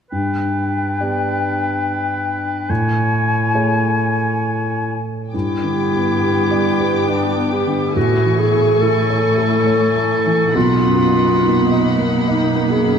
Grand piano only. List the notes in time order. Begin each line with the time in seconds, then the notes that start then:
0.12 G2
1.00 B3 G4 D5
2.69 A2
3.54 A3 G#4 C#5
5.34 G2
5.63 D3
5.93 B3
6.23 G4
6.51 D5
6.80 B4
7.09 D5
7.37 B3
7.66 D3
7.96 A2
8.25 E3
8.54 A3
8.82 E4
9.10 C#5
9.38 A4
9.67 C#5
9.96 A3
10.26 E3
10.55 B1
10.85 F#2
11.13 A#3
11.42 D#4
11.70 D#5
11.98 A#3
12.27 D#5
12.55 A#3
12.84 F#2